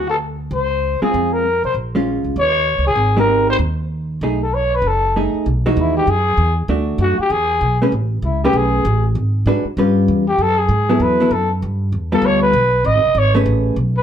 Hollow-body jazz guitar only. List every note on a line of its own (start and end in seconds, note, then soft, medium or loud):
1.02 1.42 G#3 medium
1.02 1.42 C4 medium
1.02 1.42 F4 medium
1.95 2.35 G#3 medium
1.95 2.35 C#4 medium
1.95 2.35 F4 medium
3.17 3.57 G#3 medium
3.17 3.58 C4 medium
3.17 3.58 D#4 medium
3.17 3.58 G4 medium
4.23 4.40 A3 soft
4.23 4.40 D#4 medium
4.23 4.40 G#4 medium
5.16 5.46 A3 medium
5.16 5.46 D#4 medium
5.16 5.47 G#4 medium
5.66 6.05 E3 medium
5.66 6.05 G#3 medium
5.66 6.06 D#4 medium
5.66 6.06 F#4 medium
6.69 7.15 A3 medium
6.69 7.15 D4 medium
6.69 7.16 F#4 medium
7.82 7.92 A3 medium
7.82 7.92 C#4 medium
7.82 7.92 G#4 medium
7.82 7.92 B4 medium
8.44 8.83 A3 medium
8.44 8.84 C#4 medium
8.44 8.84 G#4 medium
8.44 8.84 B4 medium
9.47 9.64 G#3 medium
9.47 9.64 D4 medium
9.47 9.65 F#4 medium
9.47 9.65 B4 medium
9.78 10.24 G3 medium
9.78 10.24 C#4 medium
9.78 10.24 F4 medium
9.78 10.24 B4 medium
10.89 11.18 F#3 medium
10.89 11.18 B3 medium
10.89 11.19 E4 medium
10.89 11.19 A4 medium
11.20 11.30 F#3 medium
11.20 11.31 B3 medium
11.20 11.31 E4 medium
11.20 11.31 A4 medium
12.12 12.52 G3 medium
12.12 12.52 B3 medium
12.12 12.53 F4 medium
12.12 12.53 A4 medium
13.35 13.75 A3 medium
13.35 13.75 C#4 medium
13.35 13.76 G#4 medium
13.35 13.76 B4 medium